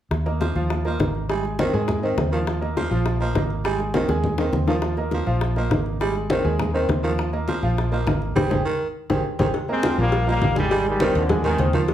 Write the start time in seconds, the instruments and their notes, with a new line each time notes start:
0.11 fingered electric bass D#2, high bongo, high conga
0.26 grand piano A#3 A#4 D#5, high bongo, high conga
0.40 baritone saxophone F3, high bongo, high conga
0.55 fingered electric bass D#2, grand piano F3 F4 F5, high bongo, high conga
0.70 high bongo, high conga
0.85 baritone saxophone F3, grand piano A#3 A#4 D#5, high bongo, high conga
0.99 fingered electric bass G#1, grand piano A#3 A#4 D#5, high bongo, low bongo, high conga
1.15 high conga
1.29 baritone saxophone G3, grand piano G#3 G#4 G#5, high bongo, high conga
1.44 high bongo, high conga
1.59 baritone saxophone D#3, grand piano C4 C5 D#5, high bongo, high conga
1.73 fingered electric bass G#2, grand piano G#3 G#4 G#5, high bongo, high conga
1.88 high bongo, high conga, low conga
2.03 baritone saxophone D#3, grand piano C4 C5 D#5, high conga
2.17 fingered electric bass D#2, high bongo, low bongo, high conga
2.32 baritone saxophone D#3, grand piano F3 F4 F5, high bongo, high conga
2.47 high bongo, high conga
2.61 grand piano A#3 A#4 D#5, high bongo, high conga
2.77 baritone saxophone F3, high bongo, high conga
2.90 fingered electric bass A#1, grand piano F3 F4 F5, high bongo, high conga
3.06 high bongo, high conga
3.21 baritone saxophone F3, grand piano A#3 A#4 D#5, high bongo, high conga
3.35 fingered electric bass G#1, grand piano A#3 A#4 D#5, high bongo, low bongo, high conga
3.50 high conga
3.65 baritone saxophone G3, grand piano G#3 G#4 G#5, high bongo, high conga
3.79 high bongo, high conga
3.94 baritone saxophone D#3, grand piano C4 C5 D#5, high bongo, high conga
4.08 fingered electric bass D#2, grand piano G#3 G#4 G#5, high bongo, high conga
4.24 high conga, low conga
4.38 baritone saxophone D#3, grand piano C4 C5 D#5, low bongo, high conga
4.52 fingered electric bass D#2, low bongo, high conga
4.67 baritone saxophone D#3, grand piano F3 F4 F5, low bongo, high conga
4.82 high bongo, high conga
4.97 grand piano A#3 A#4 D#5, high bongo, high conga
5.11 baritone saxophone F3, high bongo, high conga
5.26 fingered electric bass A#1, grand piano F3 F4 F5, high bongo, high conga
5.41 high bongo, high conga
5.56 baritone saxophone F3, grand piano A#3 A#4 D#5, high bongo, high conga
5.70 fingered electric bass G#1, grand piano A#3 A#4 D#5, high bongo, low bongo, high conga
5.86 high conga
6.01 baritone saxophone G3, grand piano G#3 G#4 G#5, high bongo, high conga
6.15 high bongo, high conga
6.30 baritone saxophone D#3, grand piano C4 C5 D#5, high bongo, high conga
6.44 fingered electric bass D#2, grand piano G#3 G#4 G#5, high bongo, high conga
6.59 high bongo, high conga, low conga
6.74 baritone saxophone D#3, grand piano C4 C5 D#5, high conga
6.89 fingered electric bass D#2, high bongo, low bongo, high conga
7.03 baritone saxophone D#3, grand piano F3 F4 F5, high bongo, high conga
7.18 high bongo, high conga
7.33 grand piano A#3 A#4 D#5, high bongo, high conga
7.48 baritone saxophone F3, high bongo, high conga
7.62 fingered electric bass A#1, grand piano F3 F4 F5, high bongo, high conga
7.77 high bongo, high conga
7.92 baritone saxophone F3, grand piano A#3 A#4 D#5, high bongo, high conga
8.06 fingered electric bass G#1, grand piano A#3 A#4 D#5, high bongo, low bongo, high conga
8.22 high conga
8.35 fingered electric bass G#1, baritone saxophone G3, grand piano G4 G#4 C5, low bongo, high conga
8.50 fingered electric bass G#1, grand piano G4 G#4 C5, low bongo, high conga
8.65 baritone saxophone D#3
9.10 fingered electric bass G#1, baritone saxophone D#3, grand piano G4 G#4 C5, low bongo, high conga
9.39 fingered electric bass G#1, baritone saxophone D#3, grand piano G4 G#4 C5, low bongo, high conga
9.54 cowbell, high conga
9.68 trombone section G#3 C4, grand piano A#3 A#4 D#5, high conga
9.83 baritone saxophone F3, cowbell, high conga
9.98 fingered electric bass A#1, grand piano F3 F4 F5, trombone section G3 A#3
10.12 cowbell, high conga
10.27 baritone saxophone F3, trombone section G3 A#3, grand piano A#3 A#4 D#5, high conga
10.41 fingered electric bass G#1, cowbell, high conga
10.55 trombone section D#3 G3, grand piano G#3 G#4 G#5, high conga
10.71 baritone saxophone G3, grand piano G#3 G#4 G#5, cowbell, high conga
10.86 trombone section D#3 G3, high conga
11.00 baritone saxophone D#3, grand piano C4 C5 D#5, cowbell, high conga
11.15 fingered electric bass D#2, trombone section A#2 D3, cowbell, high conga
11.29 grand piano G#3 G#4 G#5, cowbell, high conga, low conga
11.44 trombone section C3 D#3, baritone saxophone D#3, grand piano G#3 G#4 G#5, high conga, low conga
11.58 fingered electric bass D#2, grand piano C4 C5 D#5, cowbell, high conga
11.73 baritone saxophone D#3, grand piano F3 F4 F5, high conga
11.88 cowbell, high conga